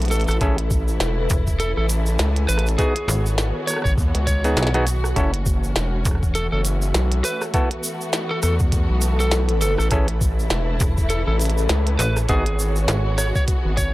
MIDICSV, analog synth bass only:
0, 0, Header, 1, 2, 480
1, 0, Start_track
1, 0, Tempo, 594059
1, 332, Time_signature, 4, 2, 24, 8
1, 11261, End_track
2, 0, Start_track
2, 0, Title_t, "Analog synth bass"
2, 0, Program_c, 0, 38
2, 0, Note_on_c, 0, 35, 97
2, 2, Note_off_c, 0, 35, 0
2, 2, Note_on_c, 0, 34, 97
2, 208, Note_off_c, 0, 34, 0
2, 226, Note_on_c, 0, 33, 98
2, 313, Note_off_c, 0, 33, 0
2, 331, Note_on_c, 0, 33, 96
2, 796, Note_off_c, 0, 33, 0
2, 808, Note_on_c, 0, 28, 102
2, 1034, Note_off_c, 0, 28, 0
2, 1433, Note_on_c, 0, 33, 103
2, 1756, Note_off_c, 0, 33, 0
2, 1771, Note_on_c, 0, 37, 100
2, 1995, Note_off_c, 0, 37, 0
2, 2010, Note_on_c, 0, 33, 97
2, 2235, Note_off_c, 0, 33, 0
2, 3111, Note_on_c, 0, 32, 98
2, 3196, Note_off_c, 0, 32, 0
2, 3212, Note_on_c, 0, 39, 98
2, 3329, Note_off_c, 0, 39, 0
2, 3353, Note_on_c, 0, 37, 96
2, 3676, Note_off_c, 0, 37, 0
2, 4173, Note_on_c, 0, 30, 100
2, 4636, Note_off_c, 0, 30, 0
2, 4651, Note_on_c, 0, 28, 99
2, 4876, Note_off_c, 0, 28, 0
2, 5271, Note_on_c, 0, 30, 100
2, 5596, Note_off_c, 0, 30, 0
2, 5611, Note_on_c, 0, 35, 101
2, 5835, Note_off_c, 0, 35, 0
2, 6813, Note_on_c, 0, 40, 97
2, 7170, Note_off_c, 0, 40, 0
2, 7190, Note_on_c, 0, 35, 100
2, 7889, Note_off_c, 0, 35, 0
2, 7910, Note_on_c, 0, 33, 101
2, 7995, Note_off_c, 0, 33, 0
2, 8010, Note_on_c, 0, 33, 97
2, 8475, Note_off_c, 0, 33, 0
2, 8488, Note_on_c, 0, 28, 98
2, 8714, Note_off_c, 0, 28, 0
2, 9107, Note_on_c, 0, 33, 100
2, 9434, Note_off_c, 0, 33, 0
2, 9450, Note_on_c, 0, 37, 96
2, 9675, Note_off_c, 0, 37, 0
2, 9932, Note_on_c, 0, 32, 96
2, 10396, Note_off_c, 0, 32, 0
2, 11032, Note_on_c, 0, 32, 102
2, 11261, Note_off_c, 0, 32, 0
2, 11261, End_track
0, 0, End_of_file